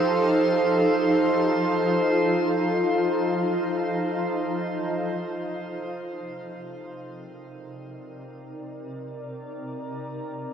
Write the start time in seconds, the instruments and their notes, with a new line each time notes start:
Already playing: ambient pad F3 D#4 G4 A4 F5, synth texture C5 C6
0.24 ambient pad F4
5.22 ambient pad C3
5.68 ambient pad C4
6.47 ambient pad A#4
6.93 ambient pad D5